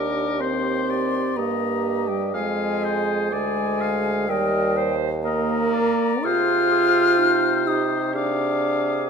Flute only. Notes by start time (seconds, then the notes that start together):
Already playing: D6
0.40 C6
1.37 A#5
2.08 G5
2.33 G#5
3.32 G#5
4.28 G5
5.23 A#5
6.24 F6
7.67 D#6
8.15 D6